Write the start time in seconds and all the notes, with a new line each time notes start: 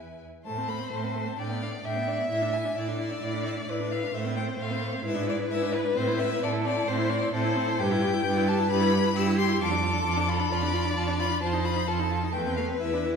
Already playing: E2 E4 B4 G#5
0.45 A2 A3 C5 A5
0.58 C4
0.68 A3 B5
0.80 C4
0.92 A2 A3 A5
1.04 C4
1.16 A3
1.27 C4
1.39 A2 D4 D5 G5
1.50 B3
1.62 D4 F5
1.73 B3
1.85 A2 D4 E5 G5
1.96 B3
2.08 D4 D5
2.19 B3
2.30 A2 E4 E5
2.42 D4
2.53 E4 G#5
2.65 D4
2.76 A2 E4 D5 E5
2.88 D4
2.99 E4 E5
3.11 D4
3.22 A2 E4 D5
3.34 D4
3.45 E4 E5
3.57 D4
3.68 A2 E4 B4 D5
3.80 D4
3.91 E4 F5
4.03 D4
4.14 A2 A3 C5 E5
4.25 C4
4.36 A3 G5
4.48 C4
4.59 A2 A3 F5
4.71 C4
4.82 A3
4.94 C4
5.04 G#2 E4 B4 E5
5.16 D4
5.27 E4 D5
5.39 D4
5.50 G#2 E4 E5
5.62 D4
5.74 E4 B4
5.85 D4
5.96 A2 C4 C5
6.08 E4
6.19 C4 E5
6.30 E4
6.42 A2 C4 A4 D5
6.53 E4
6.65 C4 D5
6.77 E4
6.87 A2 C4 C5
6.99 E4
7.09 C4 D5
7.22 E4
7.33 A2 C4 A4 C5
7.45 E4
7.56 C4
7.68 E4
7.79 G2 G4 B4 G5
7.91 E4
8.03 G4
8.14 E4
8.25 G2 G4 B4
8.37 E4
8.48 G4 A5
8.59 E4
8.71 G2 G4 B5
8.81 E4
8.93 G4
9.04 E4
9.16 G2 G4 E6
9.27 E4
9.38 G4 C6
9.49 E4
9.60 F2 F4 A4 D6
9.71 D4
9.83 F4
9.94 D4
10.05 F2 F4
10.17 D4
10.28 F4 B5
10.40 D4
10.51 F2 F4 D5
10.63 D4
10.74 F4
10.86 D4
10.97 F2 F4 A5
11.08 D4
11.19 F4 B5
11.31 D4
11.42 F2 F4 C5 A5
11.53 D#4
11.65 F4 B5
11.76 D#4
11.87 F2 F4 A4 A5
12.00 D#4
12.12 F4
12.23 D#4
12.33 E2 A3 B4 G5
12.47 C4
12.57 A3 F5
12.70 C4
12.79 E2 E4 E5
12.94 D4
13.05 E4